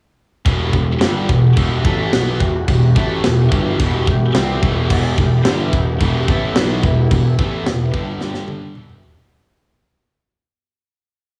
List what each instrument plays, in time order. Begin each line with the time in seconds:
0.46 picked electric bass E1, distorted electric guitar E2 B2 E3, analog synth pad E3 B3 F#4 G4, kick, china
0.73 picked electric bass E1, distorted electric guitar E2 B2, kick
1.01 picked electric bass G1, distorted electric guitar G2 D3 G3, snare, china
1.29 picked electric bass E1, distorted electric guitar E2 B2, kick
1.57 picked electric bass E1, distorted electric guitar E2 B2 E3, kick, china
1.85 picked electric bass A1, distorted electric guitar A2 E3 A3, kick
2.13 picked electric bass B1, distorted electric guitar B2 F#3 B3, snare, china
2.40 picked electric bass E1, distorted electric guitar E2 B2, kick
2.68 picked electric bass E1, distorted electric guitar E2 B2, kick, china
2.95 picked electric bass A1, distorted electric guitar A2 E3 A3, kick
3.24 picked electric bass E1, distorted electric guitar E2 B2, snare, china
3.51 picked electric bass G1, distorted electric guitar G2 D3 G3, kick
3.80 picked electric bass E1, distorted electric guitar E2 B2 E3, kick, china
4.07 picked electric bass E1, distorted electric guitar E2 B2, kick
4.35 picked electric bass C2, distorted electric guitar C3 G3 C4, snare, china
4.62 picked electric bass E1, distorted electric guitar E2 B2 E3, kick
4.90 picked electric bass E1, distorted electric guitar E2 B2 E3, analog synth pad E4, kick, china, crash
5.18 picked electric bass E1, distorted electric guitar E2 B2, kick
5.45 picked electric bass G1, distorted electric guitar G2 D3 G3, snare, china
5.73 picked electric bass E1, distorted electric guitar E2 B2, kick
6.00 picked electric bass E1, distorted electric guitar E2 B2 E3, kick, china
6.28 picked electric bass A1, distorted electric guitar A2 E3 A3, kick
6.56 picked electric bass B1, distorted electric guitar B2 F#3 B3, snare, china
6.83 picked electric bass E1, distorted electric guitar E2 B2, kick
7.11 picked electric bass E1, distorted electric guitar E2 B2, kick, china
7.39 picked electric bass A1, distorted electric guitar A2 E3 A3, kick
7.66 picked electric bass E1, distorted electric guitar E2 B2, snare, china
7.93 picked electric bass G1, distorted electric guitar G2 D3 G3, kick
8.20 picked electric bass G1, distorted electric guitar G2 D3 G3, analog synth pad G3 D4, snare
8.34 snare
8.48 high tom
8.62 high tom
8.75 picked electric bass E1, distorted electric guitar E2 B2 E3, analog synth pad E3 B3 F#4 G4, mid tom
8.89 mid tom
9.03 floor tom
9.17 floor tom